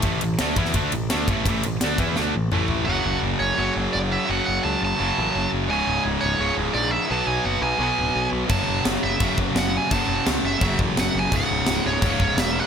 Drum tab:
CC |----------------|----------------|----------------|----------------|
RD |x-x-x-x-x-x-x-x-|x-x-x-x---------|----------------|----------------|
SD |----o--o----o---|----o---o-------|----------------|----------------|
T2 |----------------|------------o---|----------------|----------------|
FT |----------------|--------------o-|----------------|----------------|
BD |o-----o-o-----o-|o-----o---------|----------------|----------------|

CC |----------------|----------------|x---x---x---x---|x---x---x---x---|
RD |----------------|----------------|----------------|----------------|
SD |----------------|----------------|----o-------o---|----o-------o---|
T2 |----------------|----------------|----------------|----------------|
FT |----------------|----------------|----------------|----------------|
BD |----------------|----------------|o-------o-o-----|o-------o-o-----|

CC |x---x---x---x---|
RD |----------------|
SD |----o-------o---|
T2 |----------------|
FT |----------------|
BD |o-------o-o-----|